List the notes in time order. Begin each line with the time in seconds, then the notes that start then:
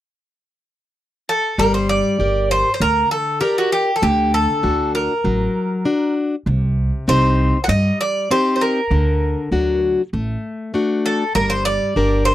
1.29 A4
1.58 G1 G3 A#4
1.74 C5
1.89 D5
2.19 G1 G4 A#4 D5
2.51 C5
2.74 C5
2.80 D2 D3 A#4
3.11 A4
3.41 G4 A#4 D5
3.58 F#4
3.72 G4
3.96 A4
4.02 D2 D3 G4
4.34 A4
4.63 D2 D4 F#4
4.95 A#4
5.24 A1 F#3
5.85 D4 F#4
6.46 C2 C3
7.08 C2 C4 D#4 G4 C5
7.64 F#5
7.68 G2 G3 D#5
8.01 D5
8.31 C4 D#4 G4 C5
8.56 C5
8.61 A#4
8.91 D2 D3
9.51 D2 F#3 D4 F#4
10.13 A1 A3
10.74 A3 D4 F#4
11.06 A4
11.35 G1 G3 A#4
11.50 C5
11.65 D5
11.96 G1 D4 G4 A#4
12.25 C5